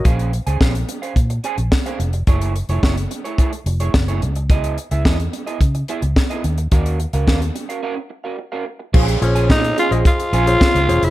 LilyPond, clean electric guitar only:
\new Staff \with { instrumentName = "Clean electric guitar" } { \time 4/4 \key bes \minor \tempo 4 = 108 <des' aes' c'' f''>8 r16 <des' aes' c'' aes''>16 <des' aes' c'' f''>16 r8 <des' aes' c'' f''>16 r8 <des' aes' c'' aes''>16 r8 <des' aes' c'' f''>16 r8 | <a fes' aes' des''>8 r16 <a fes' aes' des''>16 <a fes' aes' des''>16 r8 <a fes' aes' des''>16 <a fes' aes' des''>16 r8 <a fes' aes' des''>16 r16 <a fes' aes' des''>16 r8 | <ces' fes' aes' ees''>8 r16 <ces' fes' aes' fes''>16 <ces' fes' aes' ees''>16 r8 <ces' fes' aes' ees''>16 r8 <ces' fes' aes' fes''>16 r8 <ces' fes' aes' ees''>16 r8 | <des' ges' bes' f''>8 r16 <des' ges' bes' f''>16 <des' ges' bes' f''>16 r8 <des' ges' bes' f''>16 <des' ges' bes' f''>16 r8 <des' ges' bes' f''>16 r16 <des' ges' bes' f''>16 r8 |
<des' aes' c'' f''>8 r16 <des' aes' c'' aes''>16 <des' aes' c'' f''>16 r8 <des' aes' c'' f''>16 r8 <des' aes' c'' aes''>16 r8 <des' aes' c'' f''>16 r8 | }